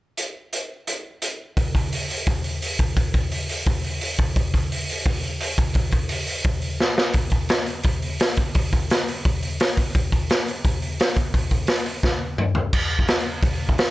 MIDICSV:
0, 0, Header, 1, 2, 480
1, 0, Start_track
1, 0, Tempo, 348432
1, 255, Time_signature, 4, 2, 24, 8
1, 19157, End_track
2, 0, Start_track
2, 0, Title_t, "Drums"
2, 240, Note_on_c, 9, 42, 46
2, 377, Note_off_c, 9, 42, 0
2, 726, Note_on_c, 9, 42, 50
2, 864, Note_off_c, 9, 42, 0
2, 1202, Note_on_c, 9, 42, 53
2, 1340, Note_off_c, 9, 42, 0
2, 1678, Note_on_c, 9, 42, 52
2, 1816, Note_off_c, 9, 42, 0
2, 2162, Note_on_c, 9, 36, 86
2, 2163, Note_on_c, 9, 46, 60
2, 2300, Note_off_c, 9, 36, 0
2, 2301, Note_off_c, 9, 46, 0
2, 2407, Note_on_c, 9, 36, 74
2, 2422, Note_on_c, 9, 46, 51
2, 2545, Note_off_c, 9, 36, 0
2, 2560, Note_off_c, 9, 46, 0
2, 2652, Note_on_c, 9, 46, 64
2, 2790, Note_off_c, 9, 46, 0
2, 2896, Note_on_c, 9, 46, 50
2, 3033, Note_off_c, 9, 46, 0
2, 3123, Note_on_c, 9, 46, 69
2, 3127, Note_on_c, 9, 36, 106
2, 3261, Note_off_c, 9, 46, 0
2, 3264, Note_off_c, 9, 36, 0
2, 3363, Note_on_c, 9, 46, 50
2, 3501, Note_off_c, 9, 46, 0
2, 3612, Note_on_c, 9, 46, 68
2, 3750, Note_off_c, 9, 46, 0
2, 3847, Note_on_c, 9, 36, 80
2, 3848, Note_on_c, 9, 46, 56
2, 3985, Note_off_c, 9, 36, 0
2, 3986, Note_off_c, 9, 46, 0
2, 4087, Note_on_c, 9, 36, 89
2, 4088, Note_on_c, 9, 46, 59
2, 4225, Note_off_c, 9, 36, 0
2, 4226, Note_off_c, 9, 46, 0
2, 4327, Note_on_c, 9, 36, 85
2, 4333, Note_on_c, 9, 46, 46
2, 4465, Note_off_c, 9, 36, 0
2, 4471, Note_off_c, 9, 46, 0
2, 4568, Note_on_c, 9, 46, 67
2, 4706, Note_off_c, 9, 46, 0
2, 4810, Note_on_c, 9, 46, 55
2, 4948, Note_off_c, 9, 46, 0
2, 5050, Note_on_c, 9, 36, 98
2, 5054, Note_on_c, 9, 46, 64
2, 5188, Note_off_c, 9, 36, 0
2, 5191, Note_off_c, 9, 46, 0
2, 5296, Note_on_c, 9, 46, 47
2, 5434, Note_off_c, 9, 46, 0
2, 5527, Note_on_c, 9, 46, 62
2, 5665, Note_off_c, 9, 46, 0
2, 5766, Note_on_c, 9, 46, 48
2, 5769, Note_on_c, 9, 36, 76
2, 5904, Note_off_c, 9, 46, 0
2, 5907, Note_off_c, 9, 36, 0
2, 6008, Note_on_c, 9, 46, 57
2, 6009, Note_on_c, 9, 36, 101
2, 6146, Note_off_c, 9, 36, 0
2, 6146, Note_off_c, 9, 46, 0
2, 6253, Note_on_c, 9, 36, 76
2, 6269, Note_on_c, 9, 46, 53
2, 6390, Note_off_c, 9, 36, 0
2, 6407, Note_off_c, 9, 46, 0
2, 6501, Note_on_c, 9, 46, 63
2, 6639, Note_off_c, 9, 46, 0
2, 6738, Note_on_c, 9, 46, 56
2, 6876, Note_off_c, 9, 46, 0
2, 6965, Note_on_c, 9, 46, 70
2, 6967, Note_on_c, 9, 36, 96
2, 7103, Note_off_c, 9, 46, 0
2, 7105, Note_off_c, 9, 36, 0
2, 7211, Note_on_c, 9, 46, 52
2, 7349, Note_off_c, 9, 46, 0
2, 7445, Note_on_c, 9, 46, 73
2, 7583, Note_off_c, 9, 46, 0
2, 7686, Note_on_c, 9, 46, 55
2, 7687, Note_on_c, 9, 36, 80
2, 7824, Note_off_c, 9, 46, 0
2, 7825, Note_off_c, 9, 36, 0
2, 7907, Note_on_c, 9, 46, 65
2, 7924, Note_on_c, 9, 36, 92
2, 8045, Note_off_c, 9, 46, 0
2, 8061, Note_off_c, 9, 36, 0
2, 8146, Note_on_c, 9, 46, 49
2, 8163, Note_on_c, 9, 36, 72
2, 8283, Note_off_c, 9, 46, 0
2, 8301, Note_off_c, 9, 36, 0
2, 8390, Note_on_c, 9, 46, 70
2, 8528, Note_off_c, 9, 46, 0
2, 8632, Note_on_c, 9, 46, 53
2, 8770, Note_off_c, 9, 46, 0
2, 8871, Note_on_c, 9, 46, 63
2, 8883, Note_on_c, 9, 36, 105
2, 9009, Note_off_c, 9, 46, 0
2, 9021, Note_off_c, 9, 36, 0
2, 9116, Note_on_c, 9, 46, 47
2, 9254, Note_off_c, 9, 46, 0
2, 9374, Note_on_c, 9, 38, 59
2, 9512, Note_off_c, 9, 38, 0
2, 9614, Note_on_c, 9, 38, 81
2, 9752, Note_off_c, 9, 38, 0
2, 9828, Note_on_c, 9, 46, 65
2, 9842, Note_on_c, 9, 36, 96
2, 9966, Note_off_c, 9, 46, 0
2, 9980, Note_off_c, 9, 36, 0
2, 10056, Note_on_c, 9, 46, 49
2, 10081, Note_on_c, 9, 36, 79
2, 10193, Note_off_c, 9, 46, 0
2, 10219, Note_off_c, 9, 36, 0
2, 10317, Note_on_c, 9, 46, 57
2, 10332, Note_on_c, 9, 38, 98
2, 10455, Note_off_c, 9, 46, 0
2, 10470, Note_off_c, 9, 38, 0
2, 10556, Note_on_c, 9, 46, 51
2, 10693, Note_off_c, 9, 46, 0
2, 10793, Note_on_c, 9, 46, 77
2, 10809, Note_on_c, 9, 36, 97
2, 10930, Note_off_c, 9, 46, 0
2, 10947, Note_off_c, 9, 36, 0
2, 11053, Note_on_c, 9, 46, 48
2, 11190, Note_off_c, 9, 46, 0
2, 11293, Note_on_c, 9, 46, 67
2, 11308, Note_on_c, 9, 38, 101
2, 11431, Note_off_c, 9, 46, 0
2, 11446, Note_off_c, 9, 38, 0
2, 11525, Note_on_c, 9, 46, 54
2, 11538, Note_on_c, 9, 36, 81
2, 11663, Note_off_c, 9, 46, 0
2, 11675, Note_off_c, 9, 36, 0
2, 11774, Note_on_c, 9, 46, 71
2, 11782, Note_on_c, 9, 36, 104
2, 11912, Note_off_c, 9, 46, 0
2, 11920, Note_off_c, 9, 36, 0
2, 12022, Note_on_c, 9, 46, 50
2, 12023, Note_on_c, 9, 36, 82
2, 12160, Note_off_c, 9, 46, 0
2, 12161, Note_off_c, 9, 36, 0
2, 12265, Note_on_c, 9, 46, 68
2, 12280, Note_on_c, 9, 38, 90
2, 12403, Note_off_c, 9, 46, 0
2, 12418, Note_off_c, 9, 38, 0
2, 12514, Note_on_c, 9, 46, 59
2, 12652, Note_off_c, 9, 46, 0
2, 12746, Note_on_c, 9, 36, 103
2, 12747, Note_on_c, 9, 46, 63
2, 12884, Note_off_c, 9, 36, 0
2, 12885, Note_off_c, 9, 46, 0
2, 12985, Note_on_c, 9, 46, 53
2, 13123, Note_off_c, 9, 46, 0
2, 13222, Note_on_c, 9, 46, 68
2, 13237, Note_on_c, 9, 38, 101
2, 13360, Note_off_c, 9, 46, 0
2, 13375, Note_off_c, 9, 38, 0
2, 13459, Note_on_c, 9, 46, 58
2, 13465, Note_on_c, 9, 36, 83
2, 13597, Note_off_c, 9, 46, 0
2, 13603, Note_off_c, 9, 36, 0
2, 13704, Note_on_c, 9, 46, 58
2, 13707, Note_on_c, 9, 36, 98
2, 13842, Note_off_c, 9, 46, 0
2, 13844, Note_off_c, 9, 36, 0
2, 13947, Note_on_c, 9, 36, 80
2, 13953, Note_on_c, 9, 46, 50
2, 14084, Note_off_c, 9, 36, 0
2, 14090, Note_off_c, 9, 46, 0
2, 14185, Note_on_c, 9, 46, 57
2, 14200, Note_on_c, 9, 38, 98
2, 14322, Note_off_c, 9, 46, 0
2, 14338, Note_off_c, 9, 38, 0
2, 14441, Note_on_c, 9, 46, 51
2, 14579, Note_off_c, 9, 46, 0
2, 14666, Note_on_c, 9, 46, 65
2, 14667, Note_on_c, 9, 36, 105
2, 14804, Note_off_c, 9, 46, 0
2, 14805, Note_off_c, 9, 36, 0
2, 14907, Note_on_c, 9, 46, 49
2, 15044, Note_off_c, 9, 46, 0
2, 15149, Note_on_c, 9, 46, 70
2, 15164, Note_on_c, 9, 38, 104
2, 15287, Note_off_c, 9, 46, 0
2, 15302, Note_off_c, 9, 38, 0
2, 15376, Note_on_c, 9, 46, 54
2, 15382, Note_on_c, 9, 36, 81
2, 15513, Note_off_c, 9, 46, 0
2, 15520, Note_off_c, 9, 36, 0
2, 15622, Note_on_c, 9, 36, 81
2, 15624, Note_on_c, 9, 46, 62
2, 15760, Note_off_c, 9, 36, 0
2, 15762, Note_off_c, 9, 46, 0
2, 15853, Note_on_c, 9, 46, 52
2, 15860, Note_on_c, 9, 36, 74
2, 15991, Note_off_c, 9, 46, 0
2, 15998, Note_off_c, 9, 36, 0
2, 16079, Note_on_c, 9, 46, 70
2, 16094, Note_on_c, 9, 38, 86
2, 16217, Note_off_c, 9, 46, 0
2, 16232, Note_off_c, 9, 38, 0
2, 16335, Note_on_c, 9, 46, 53
2, 16473, Note_off_c, 9, 46, 0
2, 16578, Note_on_c, 9, 36, 90
2, 16589, Note_on_c, 9, 38, 62
2, 16716, Note_off_c, 9, 36, 0
2, 16727, Note_off_c, 9, 38, 0
2, 17059, Note_on_c, 9, 45, 81
2, 17197, Note_off_c, 9, 45, 0
2, 17288, Note_on_c, 9, 43, 79
2, 17426, Note_off_c, 9, 43, 0
2, 17536, Note_on_c, 9, 49, 96
2, 17538, Note_on_c, 9, 36, 88
2, 17673, Note_off_c, 9, 49, 0
2, 17676, Note_off_c, 9, 36, 0
2, 17894, Note_on_c, 9, 36, 83
2, 18014, Note_on_c, 9, 46, 46
2, 18029, Note_on_c, 9, 38, 108
2, 18032, Note_off_c, 9, 36, 0
2, 18152, Note_off_c, 9, 46, 0
2, 18167, Note_off_c, 9, 38, 0
2, 18495, Note_on_c, 9, 36, 109
2, 18498, Note_on_c, 9, 46, 52
2, 18633, Note_off_c, 9, 36, 0
2, 18636, Note_off_c, 9, 46, 0
2, 18858, Note_on_c, 9, 36, 72
2, 18983, Note_on_c, 9, 46, 47
2, 18995, Note_off_c, 9, 36, 0
2, 18998, Note_on_c, 9, 38, 99
2, 19120, Note_off_c, 9, 46, 0
2, 19136, Note_off_c, 9, 38, 0
2, 19157, End_track
0, 0, End_of_file